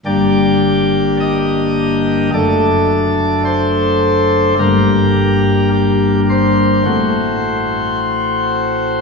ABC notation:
X:1
M:4/4
L:1/8
Q:1/4=53
K:Gm
V:1 name="Pipe organ"
d2 e2 d2 c2 | B2 G c4- c |]
V:2 name="Pipe organ"
[G,,,G,,B,DG]4 [^F,,,^F,,A,DA]4 | [G,,,G,,B,DG]4 [A,,,A,,A,C^F]4 |]